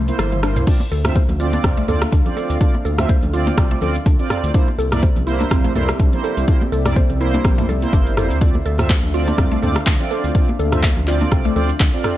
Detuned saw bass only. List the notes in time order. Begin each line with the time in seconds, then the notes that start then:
Already playing: C2
0.19 G1
0.56 C2
0.91 D2
1.29 D2
1.64 C2
1.88 D2
2.12 D2
2.50 D2
2.85 D2
3.23 D2
3.58 C2
3.82 D2
4.06 D2
4.44 D2
4.78 C2
5.16 C2
5.51 A#1
5.75 C2
5.99 C2
6.37 C2
6.72 C2
7.10 C2
7.45 A#1
7.69 C2
7.93 G1
8.30 D2
8.65 D2
9.03 D2
9.38 C2
9.62 D2
9.86 D2
10.24 D2
10.59 D2
10.97 D2
11.32 C2
11.56 D2
11.80 D2